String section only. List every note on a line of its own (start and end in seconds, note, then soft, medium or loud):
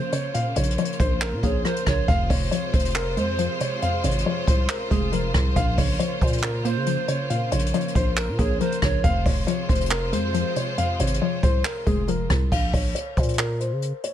0.00 2.05 C#3 medium
0.00 2.05 A#3 medium
0.00 9.00 F4 medium
0.00 9.00 C5 medium
2.08 5.53 C3 medium
2.08 5.53 G#3 medium
5.56 9.00 C#3 medium
5.56 9.00 A#3 medium
9.04 12.48 C3 medium
9.04 12.48 G#3 medium
9.04 12.48 F4 medium
9.04 12.48 C5 medium